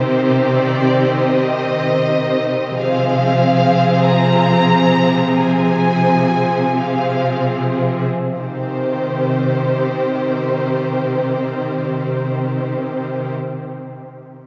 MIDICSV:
0, 0, Header, 1, 5, 480
1, 0, Start_track
1, 0, Key_signature, -3, "minor"
1, 0, Tempo, 1083032
1, 734, Tempo, 1125704
1, 1214, Time_signature, 4, 2, 24, 8
1, 1214, Tempo, 1293103
1, 2174, Tempo, 1438849
1, 2654, Tempo, 1566580
1, 3134, Tempo, 1388889
1, 5241, End_track
2, 0, Start_track
2, 0, Title_t, "Violin section"
2, 0, Program_c, 0, 48
2, 0, Note_on_c, 0, 72, 51
2, 247, Note_on_c, 0, 74, 57
2, 250, Note_off_c, 0, 72, 0
2, 490, Note_off_c, 0, 74, 0
2, 492, Note_on_c, 0, 75, 64
2, 1214, Note_off_c, 0, 75, 0
2, 1216, Note_on_c, 0, 77, 62
2, 1678, Note_off_c, 0, 77, 0
2, 1689, Note_on_c, 0, 82, 66
2, 2175, Note_off_c, 0, 82, 0
2, 2177, Note_on_c, 0, 80, 57
2, 2654, Note_on_c, 0, 77, 48
2, 2655, Note_off_c, 0, 80, 0
2, 2899, Note_off_c, 0, 77, 0
2, 3138, Note_on_c, 0, 72, 40
2, 4845, Note_off_c, 0, 72, 0
2, 5241, End_track
3, 0, Start_track
3, 0, Title_t, "Violin section"
3, 0, Program_c, 1, 48
3, 0, Note_on_c, 1, 67, 45
3, 0, Note_on_c, 1, 72, 46
3, 1199, Note_off_c, 1, 67, 0
3, 1199, Note_off_c, 1, 72, 0
3, 1216, Note_on_c, 1, 72, 54
3, 1217, Note_on_c, 1, 68, 53
3, 2160, Note_off_c, 1, 72, 0
3, 2161, Note_off_c, 1, 68, 0
3, 2177, Note_on_c, 1, 68, 44
3, 2180, Note_on_c, 1, 72, 41
3, 2646, Note_off_c, 1, 68, 0
3, 2648, Note_off_c, 1, 72, 0
3, 2660, Note_on_c, 1, 72, 37
3, 2661, Note_on_c, 1, 68, 37
3, 3040, Note_off_c, 1, 72, 0
3, 3041, Note_off_c, 1, 68, 0
3, 3141, Note_on_c, 1, 67, 34
3, 3141, Note_on_c, 1, 72, 37
3, 4848, Note_off_c, 1, 67, 0
3, 4848, Note_off_c, 1, 72, 0
3, 5241, End_track
4, 0, Start_track
4, 0, Title_t, "Viola section"
4, 0, Program_c, 2, 48
4, 0, Note_on_c, 2, 51, 41
4, 0, Note_on_c, 2, 60, 41
4, 1196, Note_off_c, 2, 51, 0
4, 1196, Note_off_c, 2, 60, 0
4, 1213, Note_on_c, 2, 53, 46
4, 1213, Note_on_c, 2, 60, 44
4, 2159, Note_off_c, 2, 53, 0
4, 2159, Note_off_c, 2, 60, 0
4, 2171, Note_on_c, 2, 60, 33
4, 2173, Note_on_c, 2, 53, 36
4, 2643, Note_off_c, 2, 60, 0
4, 2644, Note_off_c, 2, 53, 0
4, 2653, Note_on_c, 2, 53, 36
4, 2654, Note_on_c, 2, 60, 33
4, 3037, Note_off_c, 2, 53, 0
4, 3037, Note_off_c, 2, 60, 0
4, 3131, Note_on_c, 2, 51, 29
4, 3131, Note_on_c, 2, 60, 32
4, 4838, Note_off_c, 2, 51, 0
4, 4838, Note_off_c, 2, 60, 0
4, 5241, End_track
5, 0, Start_track
5, 0, Title_t, "Cello section"
5, 0, Program_c, 3, 48
5, 0, Note_on_c, 3, 48, 43
5, 1197, Note_off_c, 3, 48, 0
5, 1210, Note_on_c, 3, 48, 45
5, 3031, Note_off_c, 3, 48, 0
5, 3136, Note_on_c, 3, 48, 30
5, 4843, Note_off_c, 3, 48, 0
5, 5241, End_track
0, 0, End_of_file